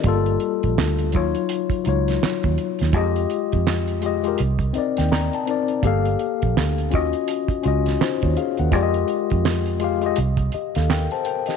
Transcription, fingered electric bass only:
0.05 G1
0.65 A#1
0.78 D2
1.16 D#2
1.87 C#2
2.24 muted fingered electric bass stroke
2.45 D#2
2.82 D#2
2.94 F2
3.54 F2
4.40 C2
4.77 muted fingered electric bass stroke
4.99 D#2
5.84 G1
6.44 A#1
6.57 D2
6.95 D#2
7.66 C#2
8.24 D#2
8.60 D#2
8.73 F2
9.32 F2
10.18 C2
10.54 muted fingered electric bass stroke
10.76 D#2

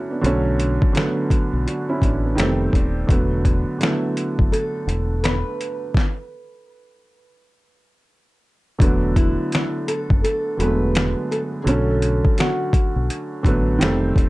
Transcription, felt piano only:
Already playing: D3 F#3 A3 B3 C#4 D4 E4 F#4
0.10 B3 D4
0.21 D3 F#3 A3
0.26 C#4
0.93 D3 F#3 A3
0.98 B3
1.67 D4 F#4
1.89 C#4 E4
2.02 B3 D4
2.25 B3
2.35 D#3 G3 A3
2.40 C4
3.07 D3 F#3 A3
3.12 B3
3.79 D3 F#3 A3
3.83 B3
8.79 D3 F#3 A3
8.83 B3
10.57 D3 F#3 G#3
10.62 B3
10.67 A3
11.64 D3 F#3 A3
11.69 C#4
13.43 D3 F#3 A3
13.47 B3
13.79 D#3 G3 A3
13.83 C4

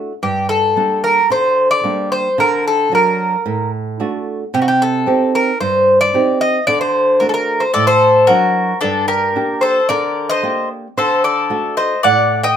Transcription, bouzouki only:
0.23 G4
0.49 A4
1.04 A#4
1.32 C5
1.71 D5
2.12 C5
2.40 A#4
2.68 A4
2.95 A#4
4.54 G4
4.62 F#4
4.68 G4
4.82 A4
5.35 A#4
5.61 C5
6.01 D5
6.41 D#5
6.67 D5
6.81 C5
7.20 A#4
7.29 A4
7.34 A#4
7.60 C5
7.74 D5
7.87 C5
8.27 A#4
8.81 A4
9.08 A#4
9.61 C5
9.89 D5
10.29 D#5
10.98 C5
11.24 D5
11.77 D#5
12.04 F#5
12.43 G5

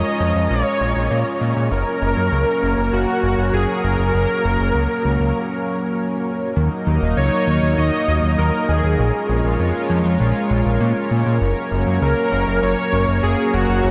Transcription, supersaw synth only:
Already playing: D#5
0.50 C#5
1.72 A#4
2.93 F#4
3.53 G#4
3.83 A#4
7.17 C#5
7.77 D#5
8.38 A#4
8.69 G#4
12.02 A#4
12.62 C#5
13.23 G#4
13.54 F#4

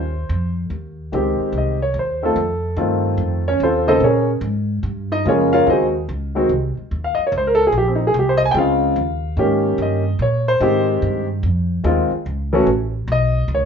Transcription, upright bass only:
Already playing: D#2
0.29 F2
0.70 D#2
1.13 C#2
1.40 muted upright bass stroke
1.52 C2
1.94 D#2
2.36 F2
2.76 G2
3.17 F2
3.60 D#2
4.00 A#2
4.41 G#2
4.83 G2
5.25 F2
5.67 D#2
6.09 C#2
6.49 C2
6.77 muted upright bass stroke
6.91 D#2
7.18 muted upright bass stroke
7.32 C#2
7.72 A#1
8.14 C2
8.54 C#2
8.96 D#2
9.37 G#2
9.78 G2
10.19 A#2
10.60 G#2
11.02 G2
11.43 F2
11.84 D#2
12.11 muted upright bass stroke
12.26 C#2
12.66 A1
13.08 B1
13.48 C#2

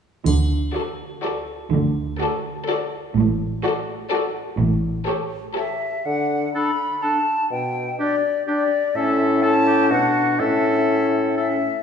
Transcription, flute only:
5.56 E5
6.05 F#5
6.55 B5
7.02 A5
7.51 G5
8.00 D5
8.48 D5
8.96 E5
9.42 A5
9.90 F#5
10.39 E5
11.36 E5

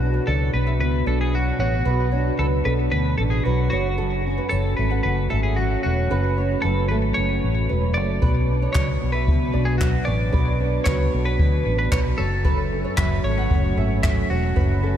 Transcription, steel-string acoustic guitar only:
Already playing: B2 B3 F#4
0.02 D4
0.28 F#3
0.54 B3
0.81 B2
1.07 D4
1.34 F#3
1.60 B3
1.87 B2
2.13 D4
2.41 F#3
2.66 B3
2.94 B2
3.21 D4
3.46 F#3
3.73 F#2
3.99 F#2
4.27 C#4
4.53 F#3
4.79 A3
5.05 F#2
5.32 C#4
5.58 F#3
5.84 A3
6.10 F#2
6.36 C#4
6.63 F#3
6.91 A3
7.17 F#2
7.69 F#3
7.97 A3
8.23 B2
8.51 D4
8.75 F#3
9.02 B3
9.29 B2
9.56 D4
9.81 F#3
10.08 B3
10.34 B2
10.61 D4
10.88 F#3
11.14 B3
11.40 B2
11.66 D4
11.92 F#3
12.19 F#2
12.45 F#2
12.73 C#4
12.98 F#3
13.26 A3
13.51 F#2
13.77 C#4
14.05 F#3
14.31 A3
14.58 F#2
14.83 C#4

